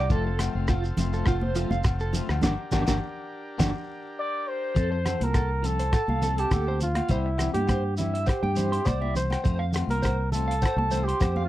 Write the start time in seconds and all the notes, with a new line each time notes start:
0.00 D5
0.10 F1 F3 A3 C4 F4 A4, kick, shekere
0.27 A4
0.39 F3 A3 C4 F4, cross-stick, closed hi-hat, low agogo, shekere
0.54 F1 A3 C4 F4
0.68 F4, kick, cross-stick, low agogo, shekere
0.84 shekere
0.97 F1 F3 A3 C4 F4, closed hi-hat, low conga, shekere
1.13 A3 C4 F4 A4, shekere
1.26 F1 F4, kick, cross-stick, low agogo, shekere
1.41 C5, high conga
1.55 F3 A3 C4 F4, closed hi-hat, shekere
1.70 F1 F5, high conga, shekere
1.84 kick, cross-stick, low agogo, shekere
1.99 A4, shekere
2.13 F3 A3 C4 F4, closed hi-hat, low conga, shekere
2.29 D2, cross-stick, low agogo
2.42 G1 A#3 D4 G4 A#4, kick, snare, low conga, low agogo, shekere
2.72 G1 A#3 D4 G4 A#4, kick, snare, low conga, low agogo, shekere
2.87 G1 A#3 D4 G4 A#4, kick, snare, low conga, low agogo, shekere
3.58 G1 A#3 D4 G4 A#4, kick, snare, low conga, low agogo, shekere
4.19 D5
4.47 C5
4.75 F2 F3 C4 F4 A4, kick, closed hi-hat, shekere
4.92 C5
5.04 F3 C4 F4 A4, cross-stick, closed hi-hat, low conga, low agogo, shekere
5.18 C2 C4 F4 A4, closed hi-hat, high conga
5.24 A#4
5.34 A4, kick, cross-stick, closed hi-hat, low agogo, shekere
5.62 F3 C4 F4 A4, closed hi-hat, low conga, shekere
5.79 C5, closed hi-hat
5.93 A4, kick, cross-stick, closed hi-hat, low agogo, shekere
6.08 C2 F5, high conga
6.22 F3 C4 F4 A4, closed hi-hat, low conga, shekere
6.37 C4 F4 G4 A4 A5, closed hi-hat
6.51 D2 A4, kick, cross-stick, closed hi-hat, high conga, low agogo, shekere
6.67 C4 F4 A4 C5
6.81 F4, closed hi-hat, low conga, shekere
6.95 F5, cross-stick, closed hi-hat, high conga, low agogo
7.09 C2 G3 C4 E4 G4 C5, kick, closed hi-hat, shekere
7.26 muted clean electric guitar stroke
7.37 G3 C4 E4 G4, cross-stick, closed hi-hat, low conga, low agogo, shekere
7.53 G2 E4 G4, closed hi-hat, high conga
7.58 C4
7.67 C5, kick, cross-stick, closed hi-hat, low agogo, shekere
7.97 G3 C4 E4 G4, closed hi-hat, low conga, shekere
8.14 E5, closed hi-hat
8.26 G4 C5, kick, cross-stick, closed hi-hat, low agogo, shekere
8.43 G2 G5, high conga
8.55 G3 C4 E4 G4 C5, closed hi-hat, low conga, shekere
8.71 C4 E4 G4 C6, closed hi-hat
8.85 C2 C5 D5, kick, cross-stick, closed hi-hat, high conga, low agogo, shekere
9.00 E4 G4 E5, muted clean electric guitar stroke, high conga
9.15 C5, closed hi-hat, low conga, shekere
9.30 G5, cross-stick, closed hi-hat, high conga, low agogo
9.44 F2 A3 C4 F4 C5, kick, closed hi-hat, shekere
9.59 F5
9.73 A3 C4, cross-stick, closed hi-hat, low conga, low agogo, shekere
9.77 F4
9.87 C2 F4 A#4, closed hi-hat, high conga
9.93 muted clean electric guitar stroke
10.02 C5, kick, cross-stick, closed hi-hat, low agogo, shekere
10.32 A3 C4 F4 A4, closed hi-hat, low conga, shekere
10.48 F5, closed hi-hat
10.62 C5, kick, cross-stick, closed hi-hat, low agogo, shekere
10.76 C2 A5, high conga
10.91 A3 C4 F4 C5, closed hi-hat, low conga, shekere
11.04 F4 G4
11.08 C4 C6, closed hi-hat
11.20 F2 C5, kick, cross-stick, closed hi-hat, high conga, low agogo, shekere
11.36 C4 F4 F5, high conga
11.45 F4